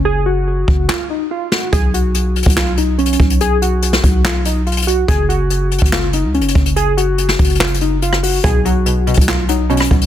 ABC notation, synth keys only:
X:1
M:4/4
L:1/8
Q:1/4=143
K:Blyd
V:1 name="Synth keys"
G F3 E D E F | G F3 E D C2 | G F3 E D E F | G F3 E D C2 |
G F3 E D E F | G F3 E D C2 |]